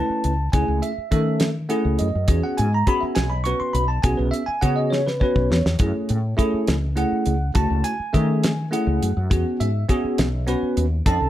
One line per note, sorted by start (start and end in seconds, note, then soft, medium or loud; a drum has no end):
0.00 0.31 A3 medium
0.00 0.32 C#4 medium
0.00 0.32 E4 medium
0.00 0.32 B4 medium
0.00 0.49 A5 medium
0.10 muted fretless electric bass stroke soft
0.24 0.48 C#2 medium
0.24 closed hi-hat medium
0.52 0.65 C#2 medium
0.52 0.90 A3 medium
0.52 0.91 C#4 medium
0.52 0.91 E4 medium
0.52 0.91 G#4 medium
0.52 0.81 G#5 medium
0.52 kick loud
0.52 closed hi-hat medium
0.68 0.80 C#2 medium
0.82 1.11 E5 medium
0.82 closed hi-hat medium
0.98 muted fretless electric bass stroke soft
1.11 1.71 D#3 medium
1.11 1.48 A3 medium
1.11 1.48 C#4 medium
1.11 1.49 A4 medium
1.11 1.49 E5 medium
1.11 kick medium
1.11 closed hi-hat medium
1.40 snare loud
1.40 closed hi-hat medium
1.69 2.07 A3 medium
1.69 2.07 C#4 medium
1.69 2.07 E4 medium
1.69 2.07 G#4 loud
1.69 1.97 F#5 medium
1.69 closed hi-hat medium
1.85 1.97 C#2 medium
1.99 2.12 F#2 medium
1.99 2.26 D#5 medium
1.99 closed hi-hat medium
2.15 2.27 F#2 medium
2.28 2.40 E2 medium
2.28 2.65 B3 medium
2.28 2.65 C#4 medium
2.28 2.66 F#4 medium
2.28 2.66 G#4 medium
2.28 kick loud
2.28 closed hi-hat medium
2.44 2.58 F#5 medium
2.57 2.82 G#2 medium
2.57 2.72 G#5 medium
2.57 closed hi-hat medium
2.74 2.88 A#5 medium
2.87 3.24 B3 medium
2.87 3.24 C#4 medium
2.87 3.24 F#4 medium
2.87 3.25 G#4 loud
2.87 3.02 B5 loud
2.87 kick medium
2.87 closed hi-hat medium
3.01 3.15 E5 medium
3.01 muted fretless electric bass stroke soft
3.15 3.52 B1 medium
3.15 3.30 G#5 loud
3.15 snare loud
3.15 closed hi-hat medium
3.30 3.44 B5 medium
3.44 3.83 B3 medium
3.44 3.83 C#4 medium
3.44 3.83 F#4 medium
3.44 3.83 B4 medium
3.44 3.59 C#6 loud
3.44 closed hi-hat medium
3.60 3.74 C6 medium
3.60 muted fretless electric bass stroke soft
3.73 3.98 B1 medium
3.73 3.88 B5 medium
3.73 closed hi-hat medium
3.88 4.03 A5 medium
4.03 4.16 B1 medium
4.03 4.41 B3 medium
4.03 4.41 C#4 medium
4.03 4.41 F#4 medium
4.03 4.41 G#4 medium
4.03 4.17 G#5 medium
4.03 kick loud
4.03 closed hi-hat medium
4.17 4.30 B1 medium
4.17 4.32 B4 medium
4.31 4.46 E5 medium
4.31 closed hi-hat medium
4.46 4.61 G#5 medium
4.46 muted fretless electric bass stroke soft
4.61 5.22 C#3 medium
4.61 4.99 B3 medium
4.61 4.99 C#4 medium
4.61 5.00 F#4 medium
4.61 5.00 G#4 medium
4.61 4.76 F#5 loud
4.61 kick medium
4.61 closed hi-hat medium
4.76 4.91 D#5 medium
4.90 5.05 C#5 medium
4.90 snare medium
5.07 5.21 B4 medium
5.07 snare medium
5.20 5.58 B3 medium
5.20 5.58 C#4 medium
5.20 5.59 F#4 medium
5.20 5.59 B4 medium
5.20 6.33 C#5 medium
5.20 kick medium
5.36 5.48 B1 medium
5.36 kick medium
5.50 5.62 E2 medium
5.50 snare medium
5.65 5.77 E2 medium
5.65 snare medium
5.79 5.92 F#2 medium
5.79 6.17 A3 medium
5.79 6.17 C#4 medium
5.79 6.17 E4 medium
5.79 6.17 G#4 medium
5.79 kick loud
5.79 closed hi-hat medium
6.09 6.33 A2 medium
6.09 closed hi-hat medium
6.37 6.74 A3 loud
6.37 6.75 C#4 medium
6.37 6.75 E4 loud
6.37 6.75 G#4 loud
6.37 kick medium
6.37 closed hi-hat medium
6.54 muted fretless electric bass stroke soft
6.67 7.03 C#2 medium
6.67 snare loud
6.67 closed hi-hat medium
6.96 7.33 A3 medium
6.96 7.33 C#4 medium
6.96 7.33 E4 medium
6.96 7.34 G#4 medium
6.96 7.51 F#5 medium
6.96 closed hi-hat medium
7.12 muted fretless electric bass stroke soft
7.26 7.50 C#2 medium
7.26 closed hi-hat medium
7.54 7.67 C#2 loud
7.54 7.91 A3 medium
7.54 7.92 C#4 medium
7.54 7.92 E4 medium
7.54 7.92 F#4 medium
7.54 7.83 A5 medium
7.54 kick loud
7.54 closed hi-hat medium
7.70 7.82 C#2 medium
7.84 8.68 G#5 loud
7.84 closed hi-hat medium
7.99 muted fretless electric bass stroke soft
8.13 8.73 D#3 medium
8.13 8.50 A3 medium
8.13 8.50 C#4 medium
8.13 8.51 G#4 loud
8.13 8.50 E5 medium
8.13 kick medium
8.13 closed hi-hat medium
8.43 snare loud
8.43 closed hi-hat medium
8.71 9.08 A3 medium
8.71 9.09 C#4 medium
8.71 9.09 E4 medium
8.71 9.09 G#4 medium
8.71 9.56 F#5 medium
8.71 closed hi-hat medium
8.87 8.98 C#2 medium
9.02 9.13 F#2 medium
9.02 closed hi-hat medium
9.17 9.28 F#2 medium
9.30 9.43 E2 medium
9.30 9.67 B3 medium
9.30 9.67 C#4 medium
9.30 9.67 F#4 medium
9.30 9.68 G#4 medium
9.30 kick loud
9.30 closed hi-hat medium
9.60 9.84 G#2 medium
9.60 10.44 E5 medium
9.60 closed hi-hat medium
9.88 10.26 B3 medium
9.88 10.26 C#4 medium
9.88 10.26 F#4 medium
9.88 10.26 G#4 loud
9.88 kick medium
9.88 closed hi-hat medium
10.04 muted fretless electric bass stroke soft
10.18 10.54 B1 loud
10.18 snare loud
10.18 closed hi-hat medium
10.47 10.84 B3 medium
10.47 10.84 C#4 medium
10.47 10.85 F#4 medium
10.47 10.85 B4 loud
10.47 closed hi-hat medium
10.62 muted fretless electric bass stroke soft
10.77 11.00 D#2 medium
10.77 closed hi-hat medium
11.06 11.18 F2 loud
11.06 11.29 C4 medium
11.06 11.29 C#4 medium
11.06 11.29 D#4 medium
11.06 11.29 A4 medium
11.06 11.29 A5 loud
11.06 kick loud
11.06 closed hi-hat medium
11.21 11.29 C2 medium